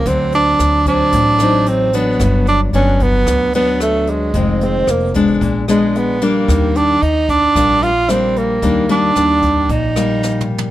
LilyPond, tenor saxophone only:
\new Staff \with { instrumentName = "Tenor saxophone" } { \time 4/4 \key ees \major \tempo 4 = 112 c'8 d'4 d'4. c'8 ces'8~ | ces'8 d'8 des'8 b4 b8 a8 aes8~ | aes8 c'8 bes8 r4 aes8 ces'8 bes8~ | bes8 d'8 ees'8 d'4 f'8 c'8 bes8~ |
bes8 d'4. ees'4. r8 | }